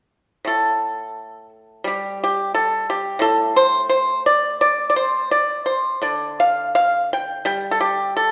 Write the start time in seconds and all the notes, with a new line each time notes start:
0.45 A2 A4
1.84 G3 G4
2.24 G4
2.55 A4
2.90 G4
3.19 A2 A4
3.56 C5
3.89 C5
4.26 D5
4.61 D5
4.90 D5
4.96 C5
5.31 D5
5.66 C5
6.02 D3 D5
6.40 F5
6.75 F5
7.13 G5
7.45 G3 G5
7.71 A4
7.81 G4
8.17 A4